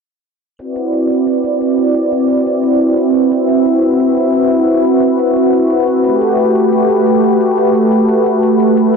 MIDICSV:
0, 0, Header, 1, 3, 480
1, 0, Start_track
1, 0, Tempo, 340909
1, 831, Time_signature, 4, 2, 24, 8
1, 12624, End_track
2, 0, Start_track
2, 0, Title_t, "Analog synth pad"
2, 0, Program_c, 0, 89
2, 833, Note_on_c, 0, 60, 82
2, 833, Note_on_c, 0, 66, 78
2, 833, Note_on_c, 0, 74, 91
2, 834, Note_on_c, 0, 71, 77
2, 835, Note_on_c, 0, 64, 77
2, 4634, Note_off_c, 0, 74, 0
2, 4670, Note_on_c, 0, 76, 89
2, 8455, Note_off_c, 0, 60, 0
2, 8456, Note_off_c, 0, 64, 0
2, 8472, Note_off_c, 0, 76, 0
2, 8510, Note_on_c, 0, 57, 81
2, 8510, Note_on_c, 0, 67, 75
2, 12312, Note_off_c, 0, 67, 0
2, 12354, Note_on_c, 0, 69, 75
2, 12624, Note_off_c, 0, 57, 0
2, 12624, Note_off_c, 0, 66, 0
2, 12624, Note_off_c, 0, 69, 0
2, 12624, Note_off_c, 0, 71, 0
2, 12624, End_track
3, 0, Start_track
3, 0, Title_t, "Drums"
3, 831, Note_on_c, 9, 42, 77
3, 972, Note_off_c, 9, 42, 0
3, 1070, Note_on_c, 9, 42, 89
3, 1211, Note_off_c, 9, 42, 0
3, 1311, Note_on_c, 9, 42, 76
3, 1452, Note_off_c, 9, 42, 0
3, 1550, Note_on_c, 9, 42, 87
3, 1690, Note_off_c, 9, 42, 0
3, 1789, Note_on_c, 9, 42, 74
3, 1930, Note_off_c, 9, 42, 0
3, 2029, Note_on_c, 9, 42, 93
3, 2170, Note_off_c, 9, 42, 0
3, 2268, Note_on_c, 9, 42, 73
3, 2409, Note_off_c, 9, 42, 0
3, 2510, Note_on_c, 9, 42, 90
3, 2651, Note_off_c, 9, 42, 0
3, 2749, Note_on_c, 9, 42, 77
3, 2890, Note_off_c, 9, 42, 0
3, 2989, Note_on_c, 9, 42, 90
3, 3130, Note_off_c, 9, 42, 0
3, 3230, Note_on_c, 9, 42, 75
3, 3370, Note_off_c, 9, 42, 0
3, 3470, Note_on_c, 9, 42, 86
3, 3611, Note_off_c, 9, 42, 0
3, 3710, Note_on_c, 9, 42, 80
3, 3851, Note_off_c, 9, 42, 0
3, 3950, Note_on_c, 9, 42, 93
3, 4091, Note_off_c, 9, 42, 0
3, 4192, Note_on_c, 9, 42, 78
3, 4332, Note_off_c, 9, 42, 0
3, 4431, Note_on_c, 9, 42, 86
3, 4572, Note_off_c, 9, 42, 0
3, 4670, Note_on_c, 9, 42, 79
3, 4811, Note_off_c, 9, 42, 0
3, 4912, Note_on_c, 9, 42, 86
3, 5053, Note_off_c, 9, 42, 0
3, 5153, Note_on_c, 9, 42, 76
3, 5294, Note_off_c, 9, 42, 0
3, 5392, Note_on_c, 9, 42, 86
3, 5532, Note_off_c, 9, 42, 0
3, 5632, Note_on_c, 9, 42, 74
3, 5773, Note_off_c, 9, 42, 0
3, 5870, Note_on_c, 9, 42, 90
3, 6011, Note_off_c, 9, 42, 0
3, 6110, Note_on_c, 9, 42, 73
3, 6251, Note_off_c, 9, 42, 0
3, 6348, Note_on_c, 9, 42, 85
3, 6489, Note_off_c, 9, 42, 0
3, 6591, Note_on_c, 9, 42, 74
3, 6732, Note_off_c, 9, 42, 0
3, 6831, Note_on_c, 9, 42, 81
3, 6972, Note_off_c, 9, 42, 0
3, 7070, Note_on_c, 9, 42, 72
3, 7211, Note_off_c, 9, 42, 0
3, 7311, Note_on_c, 9, 42, 81
3, 7451, Note_off_c, 9, 42, 0
3, 7551, Note_on_c, 9, 42, 76
3, 7692, Note_off_c, 9, 42, 0
3, 7791, Note_on_c, 9, 42, 89
3, 7932, Note_off_c, 9, 42, 0
3, 8032, Note_on_c, 9, 42, 73
3, 8172, Note_off_c, 9, 42, 0
3, 8271, Note_on_c, 9, 42, 84
3, 8412, Note_off_c, 9, 42, 0
3, 8510, Note_on_c, 9, 42, 70
3, 8651, Note_off_c, 9, 42, 0
3, 8749, Note_on_c, 9, 42, 81
3, 8890, Note_off_c, 9, 42, 0
3, 8991, Note_on_c, 9, 42, 70
3, 9131, Note_off_c, 9, 42, 0
3, 9230, Note_on_c, 9, 42, 80
3, 9371, Note_off_c, 9, 42, 0
3, 9471, Note_on_c, 9, 42, 74
3, 9612, Note_off_c, 9, 42, 0
3, 9711, Note_on_c, 9, 42, 87
3, 9852, Note_off_c, 9, 42, 0
3, 9951, Note_on_c, 9, 42, 68
3, 10092, Note_off_c, 9, 42, 0
3, 10191, Note_on_c, 9, 42, 80
3, 10332, Note_off_c, 9, 42, 0
3, 10430, Note_on_c, 9, 42, 70
3, 10571, Note_off_c, 9, 42, 0
3, 10671, Note_on_c, 9, 42, 78
3, 10811, Note_off_c, 9, 42, 0
3, 10911, Note_on_c, 9, 42, 68
3, 11052, Note_off_c, 9, 42, 0
3, 11151, Note_on_c, 9, 42, 82
3, 11292, Note_off_c, 9, 42, 0
3, 11390, Note_on_c, 9, 42, 71
3, 11531, Note_off_c, 9, 42, 0
3, 11631, Note_on_c, 9, 42, 87
3, 11772, Note_off_c, 9, 42, 0
3, 11870, Note_on_c, 9, 42, 69
3, 12011, Note_off_c, 9, 42, 0
3, 12109, Note_on_c, 9, 42, 82
3, 12250, Note_off_c, 9, 42, 0
3, 12350, Note_on_c, 9, 42, 75
3, 12491, Note_off_c, 9, 42, 0
3, 12624, End_track
0, 0, End_of_file